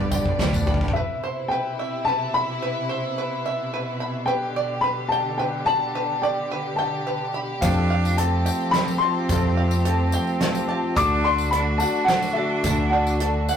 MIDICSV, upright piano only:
0, 0, Header, 1, 2, 480
1, 0, Start_track
1, 0, Key_signature, 0, "major"
1, 0, Tempo, 556586
1, 822, Time_signature, 3, 2, 24, 8
1, 11701, End_track
2, 0, Start_track
2, 0, Title_t, "Upright piano"
2, 0, Program_c, 0, 0
2, 803, Note_on_c, 0, 76, 91
2, 1280, Note_on_c, 0, 79, 98
2, 1307, Note_off_c, 0, 76, 0
2, 1766, Note_on_c, 0, 81, 117
2, 1785, Note_off_c, 0, 79, 0
2, 1996, Note_off_c, 0, 81, 0
2, 2018, Note_on_c, 0, 83, 105
2, 2944, Note_off_c, 0, 83, 0
2, 3671, Note_on_c, 0, 79, 100
2, 4149, Note_on_c, 0, 83, 108
2, 4179, Note_off_c, 0, 79, 0
2, 4386, Note_off_c, 0, 83, 0
2, 4386, Note_on_c, 0, 81, 102
2, 4637, Note_on_c, 0, 79, 93
2, 4649, Note_off_c, 0, 81, 0
2, 4880, Note_on_c, 0, 81, 127
2, 4895, Note_off_c, 0, 79, 0
2, 5363, Note_on_c, 0, 79, 88
2, 5383, Note_off_c, 0, 81, 0
2, 5830, Note_on_c, 0, 81, 90
2, 5864, Note_off_c, 0, 79, 0
2, 6289, Note_off_c, 0, 81, 0
2, 6563, Note_on_c, 0, 77, 90
2, 7047, Note_on_c, 0, 81, 95
2, 7065, Note_off_c, 0, 77, 0
2, 7513, Note_on_c, 0, 83, 115
2, 7547, Note_off_c, 0, 81, 0
2, 7747, Note_on_c, 0, 84, 105
2, 7773, Note_off_c, 0, 83, 0
2, 8688, Note_off_c, 0, 84, 0
2, 9458, Note_on_c, 0, 86, 124
2, 9696, Note_on_c, 0, 84, 110
2, 9706, Note_off_c, 0, 86, 0
2, 9925, Note_on_c, 0, 83, 105
2, 9945, Note_off_c, 0, 84, 0
2, 10155, Note_off_c, 0, 83, 0
2, 10158, Note_on_c, 0, 81, 98
2, 10388, Note_on_c, 0, 78, 103
2, 10417, Note_off_c, 0, 81, 0
2, 10627, Note_off_c, 0, 78, 0
2, 10636, Note_on_c, 0, 76, 95
2, 11096, Note_off_c, 0, 76, 0
2, 11124, Note_on_c, 0, 78, 84
2, 11701, Note_off_c, 0, 78, 0
2, 11701, End_track
0, 0, End_of_file